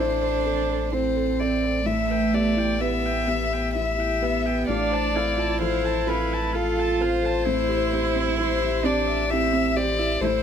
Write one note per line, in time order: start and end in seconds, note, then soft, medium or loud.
0.00 4.65 A1 medium
0.00 1.83 A2 soft
0.00 0.46 C4 soft
0.00 0.94 D4 medium
0.00 0.42 E4 soft
0.00 0.46 A4 soft
0.00 0.24 C5 soft
0.00 0.93 C5 medium
0.00 0.13 E5 medium
0.22 0.47 A4 soft
0.22 0.37 C5 medium
0.46 0.89 C4 soft
0.46 0.60 A4 medium
0.46 0.89 A4 soft
0.46 0.71 C5 soft
0.70 0.92 A4 soft
0.92 1.85 C4 medium
0.92 1.35 E4 soft
0.92 1.36 A4 soft
0.92 1.19 C5 soft
0.92 1.41 C5 soft
0.92 1.08 C5 medium
1.16 1.30 A4 medium
1.16 1.42 A4 soft
1.40 1.83 C4 soft
1.40 1.83 A4 soft
1.40 1.66 C5 soft
1.40 1.88 D5 medium
1.40 1.54 E5 medium
1.63 1.87 A4 soft
1.63 1.77 C5 soft
1.86 4.65 A2 soft
1.86 2.82 A3 medium
1.86 2.01 E4 medium
1.86 2.36 E5 medium
1.86 2.13 E5 soft
2.11 2.25 B4 medium
2.11 2.36 G5 soft
2.33 2.77 B3 soft
2.33 2.77 G4 soft
2.33 2.82 D5 medium
2.33 2.48 E5 medium
2.33 2.60 E5 soft
2.57 2.71 E4 medium
2.57 2.82 G5 soft
2.80 3.75 B3 medium
2.80 3.24 E4 soft
2.80 3.24 G4 soft
2.80 2.95 B4 medium
2.80 3.74 E5 medium
2.80 3.07 E5 soft
3.05 3.19 G4 medium
3.05 3.31 G5 soft
3.27 3.71 B3 soft
3.27 3.42 E4 medium
3.27 3.72 G4 soft
3.27 3.55 E5 soft
3.53 3.76 G5 soft
3.75 4.18 E4 soft
3.75 4.19 G4 soft
3.75 3.90 G4 medium
3.75 4.67 E5 medium
3.75 4.02 E5 soft
3.98 4.13 E4 medium
3.98 4.25 G5 soft
4.21 4.70 B3 medium
4.21 4.65 B3 soft
4.21 4.65 G4 soft
4.21 4.37 B4 medium
4.21 4.48 E5 soft
4.46 4.60 G4 soft
4.46 4.69 G5 soft
4.68 10.18 A1 medium
4.68 7.43 A2 medium
4.68 5.17 D4 medium
4.68 4.83 F4 medium
4.68 5.60 D5 medium
4.68 4.95 F5 medium
4.92 5.06 C5 medium
4.92 5.18 A5 soft
5.15 5.58 C4 soft
5.15 6.57 E4 medium
5.15 5.58 A4 soft
5.15 5.29 F5 medium
5.15 5.40 F5 soft
5.38 5.52 F4 medium
5.38 5.62 A5 soft
5.61 6.04 F3 soft
5.61 6.04 A4 soft
5.61 5.75 C5 medium
5.61 6.09 C5 medium
5.61 5.87 F5 medium
5.84 5.98 A4 medium
5.84 6.11 A5 soft
6.07 6.51 C4 soft
6.07 6.22 F4 medium
6.07 6.51 A4 soft
6.07 6.56 B4 medium
6.07 6.35 F5 soft
6.33 6.55 A5 soft
6.54 6.97 F4 soft
6.54 7.48 F4 medium
6.54 6.68 A4 medium
6.54 6.97 A4 soft
6.54 7.03 A4 medium
6.54 6.81 F5 soft
6.77 6.91 F4 medium
6.77 7.03 A5 medium
7.01 7.43 C4 soft
7.01 7.44 A4 medium
7.01 7.15 C5 medium
7.01 8.39 C5 medium
7.01 7.26 F5 medium
7.23 7.37 A4 medium
7.23 7.47 A5 soft
7.46 10.18 A2 medium
7.46 7.60 C4 medium
7.46 8.86 E4 loud
7.46 7.73 C5 medium
7.69 7.84 G4 medium
7.69 7.96 E5 medium
7.93 8.35 C4 soft
7.93 8.36 G4 soft
7.93 8.07 C5 medium
7.93 8.18 C5 medium
8.16 8.30 C4 medium
8.16 8.39 E5 medium
8.38 8.81 E4 soft
8.38 8.52 G4 medium
8.38 8.82 G4 medium
8.38 8.64 C5 medium
8.38 8.87 C5 medium
8.61 8.75 E4 medium
8.61 8.87 E5 medium
8.84 8.98 C4 medium
8.84 9.27 C4 soft
8.84 9.33 D4 medium
8.84 9.27 G4 soft
8.84 9.09 C5 medium
8.84 9.32 D5 medium
9.08 9.31 E5 medium
9.30 9.77 C4 medium
9.30 9.44 E4 medium
9.30 9.73 E4 soft
9.30 9.73 G4 medium
9.30 9.55 C5 medium
9.30 9.77 E5 medium
9.53 9.67 C4 medium
9.53 9.79 E5 medium
9.76 10.18 C4 soft
9.76 9.90 G4 medium
9.76 10.19 G4 medium
9.76 10.01 C5 medium
9.76 10.23 D5 medium
9.99 10.13 E4 medium
9.99 10.21 E5 medium
10.21 10.43 A1 medium
10.21 10.43 A2 medium
10.21 10.43 E4 loud
10.21 10.35 A4 medium
10.21 10.43 C5 medium